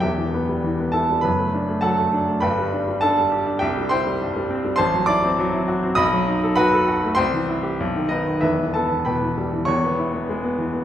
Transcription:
<<
  \new Staff \with { instrumentName = "Grand piano" } { \time 2/4 \key e \minor \tempo 4 = 100 <g' e'' g''>4. <a' a''>8 | <b' b''>4 <a' fis'' a''>4 | <b' g'' b''>4 <a' a''>4 | <g' e'' g''>8 <c'' g'' c'''>4. |
<c'' a'' c'''>8 <d'' d'''>4. | <dis'' b'' dis'''>4 <b' fis'' b''>4 | <c'' g'' c'''>4. <dis' dis''>8 | <e' b' e''>8 <a' a''>8 <b' g'' b''>4 |
\key e \major <cis'' cis'''>2 | }
  \new Staff \with { instrumentName = "Grand piano" } { \clef bass \time 2/4 \key e \minor <e,, e,>16 e16 b16 g16 e16 b16 e'16 g16 | <fis,, fis,>16 a16 d'16 a16 fis16 a16 d'16 a16 | <g,, g,>16 g16 d'16 g16 d'16 g16 g'16 d'16 | c,16 g16 e'16 g16 g,16 g16 c'16 g16 |
a,,16 fis16 e'16 c'16 fis16 e'16 fis'16 c'16 | b,,16 fis16 dis'16 a'16 fis'16 a'16 fis'16 a16 | c,16 e16 e'16 g'16 b,,16 dis16 b16 dis16 | <e,, e,>16 e16 b16 e16 b,16 e16 g16 e16 |
\key e \major <e,, e,>16 b16 e'16 b16 gis16 b16 e16 b16 | }
>>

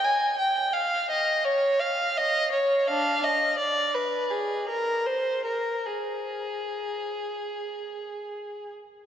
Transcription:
\new Staff \with { instrumentName = "Violin" } { \time 4/4 \key aes \major \tempo 4 = 82 aes''8 g''8 f''8 ees''8 des''8 f''8 ees''8 des''8 | <d' f''>8 ees''8 d''8 ces''8 aes'8 bes'8 c''8 bes'8 | aes'2.~ aes'8 r8 | }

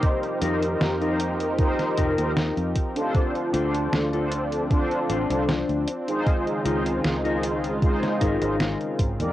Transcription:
<<
  \new Staff \with { instrumentName = "Analog polysynth" } { \time 4/4 \key f \mixolydian \tempo 4 = 77 <ees' g' bes' c''>8 <ees' g' bes' c''>8. <ees' g' bes' c''>8. <ees' g' bes' c''>8. <ees' g' bes' c''>16 r8. <d' f' a' c''>16~ | <d' f' a' c''>8 <d' f' a' c''>8. <d' f' a' c''>8. <d' f' a' c''>8. <d' f' a' c''>16 r8. <ees' f' aes' c''>16~ | <ees' f' aes' c''>8 <ees' f' aes' c''>8. <ees' f' aes' c''>8. <ees' f' aes' c''>8. <ees' f' aes' c''>16 r8. <ees' g' bes' d''>16 | }
  \new Staff \with { instrumentName = "Clean electric guitar" } { \time 4/4 \key f \mixolydian r8 <ees' f' bes'>16 r8 <ees' f' bes'>16 r4 <ees' f' bes'>4 r8 | r8 <d' f' c''>16 r8 <d' f' a'>16 r4 <d' f' c''>4 r8 | r8 <ees' f' c''>16 r8 <ees' f' bes'>16 r4 <ees' f' bes'>4 r8 | }
  \new Staff \with { instrumentName = "Analog synth pad" } { \time 4/4 \key f \mixolydian << { <f ees' g' bes'>1 | <f d'>1 | <des ees f'>1 | } \\ { c'1~ | c'1 | aes1 | } >> }
  \new Staff \with { instrumentName = "Fingered electric bass" } { \clef bass \time 4/4 \key f \mixolydian r8 f,8 f,4~ f,16 r16 f,,16 ees,8 f,16 r8 | r8 d,8 d,4~ d,16 r16 a,,16 c,8 d,16 r8 | r8 des,8 des,4~ des,16 r16 aes,,16 aes,,8 r16 aes,,16 f,16 | }
  \new DrumStaff \with { instrumentName = "Drums" } \drummode { \time 4/4 <hh bd>16 hh16 hh16 hh16 <hh sn>16 hh16 hh16 hh16 <hh bd>16 <hh sn>16 <hh bd>16 hh16 <hh sn>16 hh16 <hh bd>16 hh16 | <hh bd>16 hh16 hh16 hh16 <hh sn>16 hh16 hh16 hh16 <hh bd>16 hh16 hh16 hh16 <hh sn>16 hh16 hh16 hh16 | <hh bd>16 hh16 hh16 hh16 <hh sn>16 hh16 hh16 hh16 <hh bd>16 <hh sn>16 <hh bd>16 hh16 <hh sn>16 hh16 <hh bd>16 hh16 | }
>>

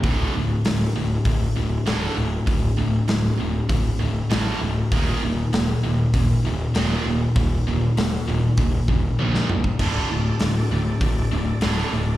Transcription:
<<
  \new Staff \with { instrumentName = "Tonewheel organ" } { \time 4/4 \key ees \lydian \tempo 4 = 98 r1 | r1 | r1 | r1 |
<d' a' d''>1 | }
  \new Staff \with { instrumentName = "Distorted electric guitar" } { \clef bass \time 4/4 \key ees \lydian <d, a, d>8 <d, a,>8 <d, a,>8 <d, a,>8 <d, a,>8 <d, a,>8 <d, a, d>8 <d, a,>8 | <d, a,>8 <d, a,>8 <d, a,>8 <d, a,>8 <d, a,>8 <d, a,>8 <d, a, d>8 <d, a,>8 | <ees, bes, ees>8 <ees, bes,>8 <ees, bes,>8 <ees, bes,>8 <ees, bes,>8 <ees, bes,>8 <ees, bes, ees>8 <ees, bes,>8 | <ees, bes,>8 <ees, bes,>8 <ees, bes,>8 <ees, bes,>8 <ees, bes,>8 <ees, bes,>8 <ees, bes, ees>8 <ees, bes,>8 |
<d, a, d>8 <d, a,>8 <d, a,>8 <d, a,>8 <d, a,>8 <d, a,>8 <d, a, d>8 <d, a,>8 | }
  \new Staff \with { instrumentName = "Overdriven electric guitar" } { \clef bass \time 4/4 \key ees \lydian <d, a, d>8 <d, a,>8 <d, a,>8 <d, a,>8 <d, a,>8 <d, a,>8 <d, a, d>8 <d, a,>8 | <d, a,>8 <d, a,>8 <d, a,>8 <d, a,>8 <d, a,>8 <d, a,>8 <d, a, d>8 <d, a,>8 | <ees, bes, ees>8 <ees, bes,>8 <ees, bes,>8 <ees, bes,>8 <ees, bes,>8 <ees, bes,>8 <ees, bes, ees>8 <ees, bes,>8 | <ees, bes,>8 <ees, bes,>8 <ees, bes,>8 <ees, bes,>8 <ees, bes,>8 <ees, bes,>8 <ees, bes, ees>8 <ees, bes,>8 |
<d, a, d>8 <d, a,>8 <d, a,>8 <d, a,>8 <d, a,>8 <d, a,>8 <d, a, d>8 <d, a,>8 | }
  \new Staff \with { instrumentName = "Picked electric bass" } { \clef bass \time 4/4 \key ees \lydian d,,8 d,,8 d,,8 d,,8 d,,8 d,,8 d,,8 d,,8 | d,,8 d,,8 d,,8 d,,8 d,,8 d,,8 a,,8 d,,8 | ees,,8 ees,,8 ees,,8 ees,,8 ees,,8 ees,,8 ees,,8 ees,,8 | ees,,8 ees,,8 ees,,8 ees,,8 ees,,8 ees,,8 bes,,8 c,8 |
d,,8 d,,8 d,,8 d,,8 d,,8 d,,8 d,,8 d,,8 | }
  \new DrumStaff \with { instrumentName = "Drums" } \drummode { \time 4/4 <hho bd>4 <hho sn>4 <hho bd>4 <hho sn>4 | <hho bd>4 <hho sn>4 <hho bd>4 <hho sn>4 | <hho bd>4 <hho sn>4 <hho bd>4 <hho sn>4 | <hho bd>4 <hho sn>4 <hho bd>8 bd8 tommh16 sn16 toml16 bd16 |
<cymc hho bd>4 <hho sn>4 <hho bd>4 <hho sn>4 | }
>>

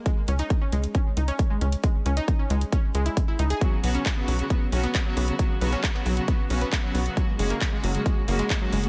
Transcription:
<<
  \new Staff \with { instrumentName = "Synth pluck" } { \time 4/4 \key b \major \tempo 4 = 135 gis16 r16 cis'16 dis'16 r16 cis'16 gis16 r16 cis'16 r16 dis'16 cis'16 r16 gis16 cis'16 r16 | gis16 r16 cis'16 dis'16 r16 cis'16 gis16 r16 cis'16 r16 gis16 e'16 r16 e'16 dis'16 gis'16 | fis16 r16 b16 cis'16 r16 b16 fis16 r16 b16 r16 cis'16 b16 r16 fis16 b16 r16 | fis16 r16 b16 cis'16 r16 b16 fis16 r16 b16 r16 cis'16 b16 r16 fis16 b16 r16 |
fis16 r16 gis16 ais16 r16 gis16 fis16 r16 gis16 r16 ais16 gis16 r16 fis16 gis16 r16 | }
  \new Staff \with { instrumentName = "String section" } { \time 4/4 \key b \major r1 | r1 | <cis fis b fis'>8 <cis fis b fis'>8 <cis fis b fis'>16 <cis fis b fis'>8 <cis fis b fis'>16 <cis fis b fis'>8 <cis fis b fis'>8 <cis fis b fis'>16 <cis fis b fis'>8 <cis fis b fis'>16 | <cis fis b fis'>8 <cis fis b fis'>8 <cis fis b fis'>16 <cis fis b fis'>8 <cis fis b fis'>16 <cis fis b fis'>8 <cis fis b fis'>8 <cis fis b fis'>16 <cis fis b fis'>8 <cis fis b fis'>16 |
<cis gis ais fis'>8 <cis gis ais fis'>8 <cis gis ais fis'>16 <cis gis ais fis'>8 <cis gis ais fis'>16 <cis gis ais fis'>8 <cis gis ais fis'>8 <cis gis ais fis'>16 <cis gis ais fis'>8 <cis gis ais fis'>16 | }
  \new Staff \with { instrumentName = "Analog synth bass" } { \clef bass \time 4/4 \key b \major r8 cis,8 r8 cis,8 r8 cis,8 r8 cis,8 | r8 cis,8 r8 cis,8 r8 cis,8 r8 cis,8 | r8 b,,8 r8 b,,8 r8 b,,8 r8 b,,8 | r8 b,,8 r8 b,,8 r8 b,,8 r8 b,,8 |
r8 fis,,8 r8 fis,,8 r8 fis,,8 r8 fis,,8 | }
  \new DrumStaff \with { instrumentName = "Drums" } \drummode { \time 4/4 <hh bd>8 hh16 hh16 <hh bd>8 hh16 hh16 <hh bd>8 hh16 hh16 <hh bd>8 hh16 hh16 | <hh bd>8 hh16 hh16 <hh bd>8 hh16 hh16 <hh bd>8 hh16 hh16 <hh bd>8 hh16 hh16 | <hh bd>8 hho16 hh16 <hc hh bd>8 hho16 hh16 <hh bd>8 hho16 hh16 <hc hh bd>8 hho16 hh16 | <hh bd>8 hho16 hh16 <hc hh bd>16 hc16 hho16 hh16 <hh bd>8 hho16 hh16 <hc hh bd>8 hho16 hh16 |
<hh bd>8 hho16 hh16 <hc hh bd>8 hho16 hh16 <hh bd>8 hho16 hh16 <hc hh bd>8 hho16 hh16 | }
>>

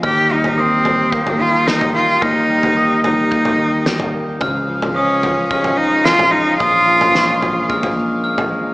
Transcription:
<<
  \new Staff \with { instrumentName = "Glockenspiel" } { \time 4/4 \key ees \mixolydian \tempo 4 = 110 f'''4 ees'''4 g'''4 g'''4 | f'''4 ees'''4 g'''4 g'''4 | f'''4 ees'''4 f'''4 f'''4 | ees'''4 des'''4 f'''4 f'''4 | }
  \new Staff \with { instrumentName = "String section" } { \time 4/4 \key ees \mixolydian << { <ees' g''>1~ | <ees' g''>1 | <des' f''>1~ | <des' f''>1 | } \\ { <g' bes'>1~ | <g' bes'>1 | <aes' c''>1 | <aes' bes'>1 | } >> }
  \new Staff \with { instrumentName = "Cello" } { \time 4/4 \key ees \mixolydian g'8 ees'8 c'4 bes8 f'8 ees'8 f'8 | ees'4. ees'2 r8 | r4 des'4 des'8 ees'8 f'8 ees'8 | f'2 r2 | }
  \new Staff \with { instrumentName = "Clean electric guitar" } { \clef bass \time 4/4 \key ees \mixolydian ees8 g8 bes8 g8 bes8 ees8 g8 bes8 | ees8 g8 bes8 g8 bes8 ees8 g8 bes8 | des8 f8 aes8 f8 aes8 des8 f8 aes8 | bes,8 f8 aes8 f8 aes8 bes,8 f8 aes8 | }
  \new Staff \with { instrumentName = "Fingered electric bass" } { \clef bass \time 4/4 \key ees \mixolydian ees,1 | ees,1 | des,1 | bes,,1 | }
  \new DrumStaff \with { instrumentName = "Drums" } \drummode { \time 4/4 <bd tomfh>8. tomfh16 r8 tomfh8 bd16 tomfh8. sn16 tomfh8. | <bd tomfh>8. tomfh16 r8 tomfh8 bd16 tomfh8. sn16 tomfh8. | <bd tomfh>8. tomfh16 r8 tomfh8 bd16 tomfh8. sn16 tomfh8. | <bd tomfh>8. tomfh16 sn8 tomfh8 bd16 tomfh8. r16 tomfh8. | }
>>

